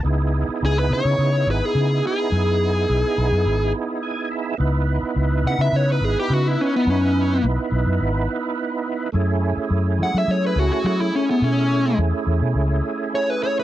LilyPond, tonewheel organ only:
\new Staff \with { instrumentName = "Tonewheel organ" } { \time 4/4 \key cis \minor \tempo 4 = 106 << { r1 | r2. gis''8 e''8 | r1 | r1 |
r1 | r1 | } \\ { <b dis' e' gis'>1~ | <b dis' e' gis'>1 | <b dis' e' b'>1~ | <b dis' e' b'>1 |
<a cis' e' gis'>1~ | <a cis' e' gis'>1 | } >> }